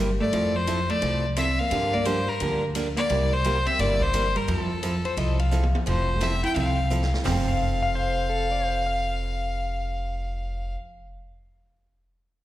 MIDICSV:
0, 0, Header, 1, 7, 480
1, 0, Start_track
1, 0, Key_signature, -1, "major"
1, 0, Tempo, 346420
1, 452, Time_signature, 4, 2, 24, 8
1, 17240, End_track
2, 0, Start_track
2, 0, Title_t, "Electric slide guitar"
2, 0, Program_c, 0, 29
2, 7001, Note_on_c, 0, 72, 96
2, 7166, Note_off_c, 0, 72, 0
2, 7178, Note_on_c, 0, 75, 90
2, 7471, Note_off_c, 0, 75, 0
2, 7479, Note_on_c, 0, 77, 87
2, 8027, Note_off_c, 0, 77, 0
2, 10365, Note_on_c, 0, 77, 83
2, 10825, Note_off_c, 0, 77, 0
2, 10843, Note_on_c, 0, 77, 80
2, 11007, Note_off_c, 0, 77, 0
2, 11020, Note_on_c, 0, 72, 96
2, 11480, Note_off_c, 0, 72, 0
2, 11495, Note_on_c, 0, 69, 88
2, 11790, Note_off_c, 0, 69, 0
2, 11798, Note_on_c, 0, 74, 89
2, 11978, Note_off_c, 0, 74, 0
2, 11978, Note_on_c, 0, 72, 75
2, 12271, Note_off_c, 0, 72, 0
2, 12283, Note_on_c, 0, 77, 79
2, 14946, Note_off_c, 0, 77, 0
2, 17240, End_track
3, 0, Start_track
3, 0, Title_t, "Fiddle"
3, 0, Program_c, 1, 110
3, 284, Note_on_c, 1, 74, 93
3, 773, Note_on_c, 1, 72, 95
3, 794, Note_off_c, 1, 74, 0
3, 1244, Note_on_c, 1, 74, 96
3, 1265, Note_off_c, 1, 72, 0
3, 1722, Note_off_c, 1, 74, 0
3, 1903, Note_on_c, 1, 76, 99
3, 2208, Note_on_c, 1, 77, 94
3, 2228, Note_off_c, 1, 76, 0
3, 2680, Note_on_c, 1, 74, 92
3, 2700, Note_off_c, 1, 77, 0
3, 2855, Note_on_c, 1, 72, 98
3, 2876, Note_off_c, 1, 74, 0
3, 3170, Note_on_c, 1, 70, 87
3, 3191, Note_off_c, 1, 72, 0
3, 3644, Note_off_c, 1, 70, 0
3, 4123, Note_on_c, 1, 74, 101
3, 4616, Note_on_c, 1, 72, 101
3, 4636, Note_off_c, 1, 74, 0
3, 5084, Note_on_c, 1, 76, 101
3, 5105, Note_off_c, 1, 72, 0
3, 5266, Note_on_c, 1, 74, 106
3, 5287, Note_off_c, 1, 76, 0
3, 5574, Note_on_c, 1, 72, 107
3, 5595, Note_off_c, 1, 74, 0
3, 6053, Note_on_c, 1, 70, 91
3, 6074, Note_off_c, 1, 72, 0
3, 6216, Note_on_c, 1, 69, 77
3, 6237, Note_off_c, 1, 70, 0
3, 7652, Note_off_c, 1, 69, 0
3, 8153, Note_on_c, 1, 72, 82
3, 8627, Note_on_c, 1, 76, 99
3, 8648, Note_off_c, 1, 72, 0
3, 8921, Note_off_c, 1, 76, 0
3, 8930, Note_on_c, 1, 79, 99
3, 9084, Note_off_c, 1, 79, 0
3, 9091, Note_on_c, 1, 77, 93
3, 9821, Note_off_c, 1, 77, 0
3, 10050, Note_on_c, 1, 77, 92
3, 14875, Note_off_c, 1, 77, 0
3, 17240, End_track
4, 0, Start_track
4, 0, Title_t, "Steel-string acoustic guitar"
4, 0, Program_c, 2, 25
4, 454, Note_on_c, 2, 53, 59
4, 458, Note_on_c, 2, 60, 61
4, 462, Note_on_c, 2, 64, 65
4, 466, Note_on_c, 2, 69, 65
4, 754, Note_off_c, 2, 53, 0
4, 756, Note_off_c, 2, 60, 0
4, 758, Note_off_c, 2, 64, 0
4, 760, Note_off_c, 2, 69, 0
4, 930, Note_on_c, 2, 53, 65
4, 934, Note_on_c, 2, 60, 75
4, 941, Note_on_c, 2, 64, 83
4, 946, Note_on_c, 2, 69, 77
4, 1090, Note_off_c, 2, 53, 0
4, 1093, Note_off_c, 2, 60, 0
4, 1096, Note_off_c, 2, 64, 0
4, 1098, Note_off_c, 2, 69, 0
4, 1405, Note_on_c, 2, 53, 53
4, 1410, Note_on_c, 2, 60, 51
4, 1414, Note_on_c, 2, 64, 58
4, 1424, Note_on_c, 2, 69, 63
4, 1709, Note_off_c, 2, 53, 0
4, 1712, Note_off_c, 2, 60, 0
4, 1714, Note_off_c, 2, 64, 0
4, 1719, Note_off_c, 2, 69, 0
4, 1891, Note_on_c, 2, 53, 67
4, 1898, Note_on_c, 2, 60, 71
4, 1900, Note_on_c, 2, 64, 73
4, 1906, Note_on_c, 2, 69, 66
4, 2051, Note_off_c, 2, 53, 0
4, 2054, Note_off_c, 2, 60, 0
4, 2055, Note_off_c, 2, 64, 0
4, 2058, Note_off_c, 2, 69, 0
4, 2370, Note_on_c, 2, 50, 61
4, 2375, Note_on_c, 2, 53, 62
4, 2376, Note_on_c, 2, 58, 59
4, 2379, Note_on_c, 2, 62, 56
4, 2382, Note_on_c, 2, 67, 64
4, 2672, Note_off_c, 2, 50, 0
4, 2674, Note_off_c, 2, 53, 0
4, 2675, Note_off_c, 2, 58, 0
4, 2676, Note_off_c, 2, 62, 0
4, 2678, Note_off_c, 2, 67, 0
4, 2842, Note_on_c, 2, 50, 67
4, 2848, Note_on_c, 2, 53, 75
4, 2852, Note_on_c, 2, 58, 68
4, 2856, Note_on_c, 2, 62, 76
4, 2858, Note_on_c, 2, 67, 82
4, 3006, Note_off_c, 2, 50, 0
4, 3009, Note_off_c, 2, 53, 0
4, 3011, Note_off_c, 2, 58, 0
4, 3013, Note_off_c, 2, 62, 0
4, 3014, Note_off_c, 2, 67, 0
4, 3329, Note_on_c, 2, 50, 55
4, 3338, Note_on_c, 2, 53, 54
4, 3340, Note_on_c, 2, 58, 64
4, 3346, Note_on_c, 2, 62, 58
4, 3348, Note_on_c, 2, 67, 58
4, 3631, Note_off_c, 2, 50, 0
4, 3636, Note_off_c, 2, 53, 0
4, 3637, Note_off_c, 2, 58, 0
4, 3639, Note_off_c, 2, 62, 0
4, 3641, Note_off_c, 2, 67, 0
4, 3809, Note_on_c, 2, 50, 65
4, 3814, Note_on_c, 2, 53, 63
4, 3818, Note_on_c, 2, 58, 69
4, 3823, Note_on_c, 2, 62, 75
4, 3824, Note_on_c, 2, 67, 72
4, 3969, Note_off_c, 2, 50, 0
4, 3972, Note_off_c, 2, 53, 0
4, 3974, Note_off_c, 2, 58, 0
4, 3976, Note_off_c, 2, 62, 0
4, 3977, Note_off_c, 2, 67, 0
4, 4286, Note_on_c, 2, 48, 59
4, 4293, Note_on_c, 2, 55, 59
4, 4296, Note_on_c, 2, 58, 65
4, 4300, Note_on_c, 2, 64, 61
4, 4303, Note_on_c, 2, 67, 57
4, 4589, Note_off_c, 2, 48, 0
4, 4593, Note_off_c, 2, 55, 0
4, 4594, Note_off_c, 2, 58, 0
4, 4596, Note_off_c, 2, 64, 0
4, 4598, Note_off_c, 2, 67, 0
4, 4774, Note_on_c, 2, 48, 75
4, 4782, Note_on_c, 2, 58, 72
4, 4783, Note_on_c, 2, 55, 76
4, 4788, Note_on_c, 2, 64, 76
4, 4790, Note_on_c, 2, 67, 81
4, 4932, Note_off_c, 2, 48, 0
4, 4936, Note_off_c, 2, 55, 0
4, 4936, Note_off_c, 2, 58, 0
4, 4939, Note_off_c, 2, 64, 0
4, 4940, Note_off_c, 2, 67, 0
4, 5248, Note_on_c, 2, 48, 54
4, 5251, Note_on_c, 2, 55, 58
4, 5255, Note_on_c, 2, 58, 58
4, 5261, Note_on_c, 2, 64, 61
4, 5263, Note_on_c, 2, 67, 58
4, 5550, Note_off_c, 2, 48, 0
4, 5551, Note_off_c, 2, 55, 0
4, 5553, Note_off_c, 2, 58, 0
4, 5557, Note_off_c, 2, 64, 0
4, 5557, Note_off_c, 2, 67, 0
4, 5726, Note_on_c, 2, 48, 56
4, 5728, Note_on_c, 2, 55, 69
4, 5735, Note_on_c, 2, 58, 65
4, 5738, Note_on_c, 2, 64, 64
4, 5740, Note_on_c, 2, 67, 75
4, 5888, Note_off_c, 2, 48, 0
4, 5888, Note_off_c, 2, 55, 0
4, 5892, Note_off_c, 2, 58, 0
4, 5893, Note_off_c, 2, 64, 0
4, 5894, Note_off_c, 2, 67, 0
4, 6201, Note_on_c, 2, 53, 59
4, 6207, Note_on_c, 2, 60, 50
4, 6214, Note_on_c, 2, 64, 64
4, 6220, Note_on_c, 2, 69, 67
4, 6506, Note_off_c, 2, 53, 0
4, 6509, Note_off_c, 2, 60, 0
4, 6513, Note_off_c, 2, 64, 0
4, 6516, Note_off_c, 2, 69, 0
4, 6689, Note_on_c, 2, 53, 72
4, 6695, Note_on_c, 2, 60, 65
4, 6698, Note_on_c, 2, 64, 67
4, 6702, Note_on_c, 2, 69, 76
4, 6848, Note_off_c, 2, 53, 0
4, 6851, Note_off_c, 2, 60, 0
4, 6853, Note_off_c, 2, 64, 0
4, 6855, Note_off_c, 2, 69, 0
4, 7161, Note_on_c, 2, 53, 53
4, 7166, Note_on_c, 2, 60, 50
4, 7174, Note_on_c, 2, 64, 63
4, 7175, Note_on_c, 2, 69, 63
4, 7466, Note_off_c, 2, 53, 0
4, 7468, Note_off_c, 2, 60, 0
4, 7472, Note_off_c, 2, 64, 0
4, 7473, Note_off_c, 2, 69, 0
4, 7640, Note_on_c, 2, 53, 65
4, 7648, Note_on_c, 2, 60, 61
4, 7649, Note_on_c, 2, 64, 66
4, 7654, Note_on_c, 2, 69, 68
4, 7804, Note_off_c, 2, 53, 0
4, 7808, Note_off_c, 2, 60, 0
4, 7808, Note_off_c, 2, 64, 0
4, 7811, Note_off_c, 2, 69, 0
4, 8120, Note_on_c, 2, 53, 62
4, 8122, Note_on_c, 2, 60, 62
4, 8132, Note_on_c, 2, 64, 52
4, 8134, Note_on_c, 2, 69, 61
4, 8425, Note_off_c, 2, 53, 0
4, 8426, Note_off_c, 2, 60, 0
4, 8431, Note_off_c, 2, 64, 0
4, 8432, Note_off_c, 2, 69, 0
4, 8598, Note_on_c, 2, 53, 73
4, 8605, Note_on_c, 2, 60, 74
4, 8609, Note_on_c, 2, 64, 71
4, 8611, Note_on_c, 2, 69, 78
4, 8763, Note_off_c, 2, 53, 0
4, 8766, Note_off_c, 2, 60, 0
4, 8768, Note_off_c, 2, 64, 0
4, 8769, Note_off_c, 2, 69, 0
4, 9086, Note_on_c, 2, 53, 56
4, 9089, Note_on_c, 2, 60, 54
4, 9096, Note_on_c, 2, 64, 61
4, 9099, Note_on_c, 2, 69, 52
4, 9388, Note_off_c, 2, 53, 0
4, 9390, Note_off_c, 2, 60, 0
4, 9393, Note_off_c, 2, 64, 0
4, 9394, Note_off_c, 2, 69, 0
4, 9564, Note_on_c, 2, 53, 58
4, 9570, Note_on_c, 2, 60, 68
4, 9577, Note_on_c, 2, 64, 65
4, 9581, Note_on_c, 2, 69, 75
4, 9725, Note_off_c, 2, 53, 0
4, 9728, Note_off_c, 2, 60, 0
4, 9732, Note_off_c, 2, 64, 0
4, 9734, Note_off_c, 2, 69, 0
4, 10033, Note_on_c, 2, 53, 70
4, 10048, Note_on_c, 2, 60, 75
4, 10071, Note_on_c, 2, 69, 70
4, 14914, Note_off_c, 2, 53, 0
4, 14929, Note_off_c, 2, 60, 0
4, 14952, Note_off_c, 2, 69, 0
4, 17240, End_track
5, 0, Start_track
5, 0, Title_t, "Hollow-body jazz guitar"
5, 0, Program_c, 3, 26
5, 284, Note_on_c, 3, 57, 74
5, 768, Note_off_c, 3, 57, 0
5, 768, Note_on_c, 3, 53, 81
5, 1249, Note_off_c, 3, 53, 0
5, 1249, Note_on_c, 3, 57, 66
5, 1724, Note_off_c, 3, 57, 0
5, 1907, Note_on_c, 3, 60, 80
5, 2219, Note_off_c, 3, 60, 0
5, 2219, Note_on_c, 3, 58, 80
5, 2677, Note_off_c, 3, 58, 0
5, 2693, Note_on_c, 3, 58, 71
5, 2860, Note_off_c, 3, 58, 0
5, 2860, Note_on_c, 3, 55, 71
5, 3150, Note_off_c, 3, 55, 0
5, 3166, Note_on_c, 3, 55, 59
5, 3642, Note_off_c, 3, 55, 0
5, 4110, Note_on_c, 3, 58, 78
5, 4593, Note_off_c, 3, 58, 0
5, 4593, Note_on_c, 3, 55, 77
5, 5083, Note_off_c, 3, 55, 0
5, 5083, Note_on_c, 3, 60, 72
5, 5251, Note_off_c, 3, 60, 0
5, 5251, Note_on_c, 3, 58, 82
5, 5557, Note_off_c, 3, 58, 0
5, 5557, Note_on_c, 3, 55, 88
5, 6023, Note_off_c, 3, 55, 0
5, 6040, Note_on_c, 3, 55, 75
5, 6218, Note_off_c, 3, 55, 0
5, 6218, Note_on_c, 3, 53, 59
5, 7653, Note_off_c, 3, 53, 0
5, 8147, Note_on_c, 3, 53, 60
5, 8614, Note_off_c, 3, 53, 0
5, 8614, Note_on_c, 3, 60, 79
5, 8918, Note_off_c, 3, 60, 0
5, 8921, Note_on_c, 3, 64, 73
5, 9079, Note_off_c, 3, 64, 0
5, 9093, Note_on_c, 3, 60, 73
5, 9822, Note_off_c, 3, 60, 0
5, 10045, Note_on_c, 3, 60, 64
5, 14871, Note_off_c, 3, 60, 0
5, 17240, End_track
6, 0, Start_track
6, 0, Title_t, "Upright bass"
6, 0, Program_c, 4, 32
6, 0, Note_on_c, 4, 31, 82
6, 259, Note_off_c, 4, 31, 0
6, 458, Note_on_c, 4, 41, 93
6, 1224, Note_off_c, 4, 41, 0
6, 1415, Note_on_c, 4, 36, 77
6, 2182, Note_off_c, 4, 36, 0
6, 2371, Note_on_c, 4, 43, 85
6, 3139, Note_off_c, 4, 43, 0
6, 3334, Note_on_c, 4, 38, 86
6, 4101, Note_off_c, 4, 38, 0
6, 4295, Note_on_c, 4, 36, 91
6, 5061, Note_off_c, 4, 36, 0
6, 5252, Note_on_c, 4, 31, 82
6, 6019, Note_off_c, 4, 31, 0
6, 6209, Note_on_c, 4, 41, 94
6, 6977, Note_off_c, 4, 41, 0
6, 7165, Note_on_c, 4, 36, 90
6, 7934, Note_off_c, 4, 36, 0
6, 8127, Note_on_c, 4, 29, 97
6, 8895, Note_off_c, 4, 29, 0
6, 9085, Note_on_c, 4, 36, 92
6, 9854, Note_off_c, 4, 36, 0
6, 10054, Note_on_c, 4, 29, 99
6, 14880, Note_off_c, 4, 29, 0
6, 17240, End_track
7, 0, Start_track
7, 0, Title_t, "Drums"
7, 453, Note_on_c, 9, 51, 62
7, 592, Note_off_c, 9, 51, 0
7, 933, Note_on_c, 9, 44, 45
7, 933, Note_on_c, 9, 51, 62
7, 1071, Note_off_c, 9, 44, 0
7, 1071, Note_off_c, 9, 51, 0
7, 1242, Note_on_c, 9, 51, 41
7, 1380, Note_off_c, 9, 51, 0
7, 1411, Note_on_c, 9, 51, 60
7, 1550, Note_off_c, 9, 51, 0
7, 1891, Note_on_c, 9, 44, 62
7, 1891, Note_on_c, 9, 51, 74
7, 2030, Note_off_c, 9, 44, 0
7, 2030, Note_off_c, 9, 51, 0
7, 2369, Note_on_c, 9, 51, 63
7, 2507, Note_off_c, 9, 51, 0
7, 2845, Note_on_c, 9, 44, 51
7, 2845, Note_on_c, 9, 51, 61
7, 2984, Note_off_c, 9, 44, 0
7, 2984, Note_off_c, 9, 51, 0
7, 3327, Note_on_c, 9, 51, 67
7, 3465, Note_off_c, 9, 51, 0
7, 3809, Note_on_c, 9, 44, 60
7, 3809, Note_on_c, 9, 51, 71
7, 3948, Note_off_c, 9, 44, 0
7, 3948, Note_off_c, 9, 51, 0
7, 4116, Note_on_c, 9, 51, 49
7, 4255, Note_off_c, 9, 51, 0
7, 4291, Note_on_c, 9, 51, 65
7, 4429, Note_off_c, 9, 51, 0
7, 4772, Note_on_c, 9, 44, 51
7, 4772, Note_on_c, 9, 51, 55
7, 4911, Note_off_c, 9, 44, 0
7, 4911, Note_off_c, 9, 51, 0
7, 5078, Note_on_c, 9, 51, 46
7, 5216, Note_off_c, 9, 51, 0
7, 5255, Note_on_c, 9, 38, 43
7, 5255, Note_on_c, 9, 51, 64
7, 5394, Note_off_c, 9, 38, 0
7, 5394, Note_off_c, 9, 51, 0
7, 5559, Note_on_c, 9, 36, 57
7, 5697, Note_off_c, 9, 36, 0
7, 5731, Note_on_c, 9, 44, 56
7, 5731, Note_on_c, 9, 51, 74
7, 5870, Note_off_c, 9, 44, 0
7, 5870, Note_off_c, 9, 51, 0
7, 6037, Note_on_c, 9, 51, 44
7, 6176, Note_off_c, 9, 51, 0
7, 6211, Note_on_c, 9, 51, 62
7, 6349, Note_off_c, 9, 51, 0
7, 6688, Note_on_c, 9, 44, 59
7, 6688, Note_on_c, 9, 51, 62
7, 6827, Note_off_c, 9, 44, 0
7, 6827, Note_off_c, 9, 51, 0
7, 6996, Note_on_c, 9, 51, 45
7, 7135, Note_off_c, 9, 51, 0
7, 7167, Note_on_c, 9, 51, 60
7, 7306, Note_off_c, 9, 51, 0
7, 7474, Note_on_c, 9, 51, 49
7, 7613, Note_off_c, 9, 51, 0
7, 7646, Note_on_c, 9, 44, 61
7, 7646, Note_on_c, 9, 48, 50
7, 7784, Note_off_c, 9, 44, 0
7, 7784, Note_off_c, 9, 48, 0
7, 7806, Note_on_c, 9, 48, 63
7, 7944, Note_off_c, 9, 48, 0
7, 7965, Note_on_c, 9, 48, 76
7, 8104, Note_off_c, 9, 48, 0
7, 8130, Note_on_c, 9, 51, 62
7, 8269, Note_off_c, 9, 51, 0
7, 8605, Note_on_c, 9, 38, 61
7, 8605, Note_on_c, 9, 44, 47
7, 8605, Note_on_c, 9, 51, 57
7, 8744, Note_off_c, 9, 38, 0
7, 8744, Note_off_c, 9, 44, 0
7, 8744, Note_off_c, 9, 51, 0
7, 8917, Note_on_c, 9, 51, 41
7, 9056, Note_off_c, 9, 51, 0
7, 9089, Note_on_c, 9, 51, 52
7, 9228, Note_off_c, 9, 51, 0
7, 9569, Note_on_c, 9, 44, 60
7, 9707, Note_off_c, 9, 44, 0
7, 9727, Note_on_c, 9, 38, 57
7, 9866, Note_off_c, 9, 38, 0
7, 9891, Note_on_c, 9, 38, 77
7, 10030, Note_off_c, 9, 38, 0
7, 10051, Note_on_c, 9, 38, 98
7, 10051, Note_on_c, 9, 43, 92
7, 10051, Note_on_c, 9, 46, 81
7, 10190, Note_off_c, 9, 38, 0
7, 10190, Note_off_c, 9, 43, 0
7, 10190, Note_off_c, 9, 46, 0
7, 17240, End_track
0, 0, End_of_file